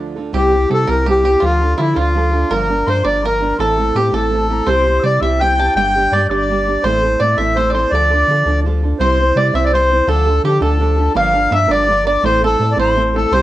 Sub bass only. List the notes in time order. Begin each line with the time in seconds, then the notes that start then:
0.33 C2
0.71 C3
0.88 C2
1.42 D2
1.79 D3
1.96 D2
2.50 G1
2.86 G2
3.04 G1
3.58 A1
3.94 A2
4.12 A1
4.66 C2
5.03 C3
5.21 C2
5.75 G1
6.12 G2
6.29 G1
6.83 A1
7.20 A2
7.37 A1
7.91 D2
8.27 D3
8.45 D2
8.99 C2
9.35 C3
9.53 C2
10.07 D2
10.43 D3
10.60 D2
11.15 G1
11.51 G2
11.68 G1
12.23 A1
12.59 A2
12.77 A1
13.31 C2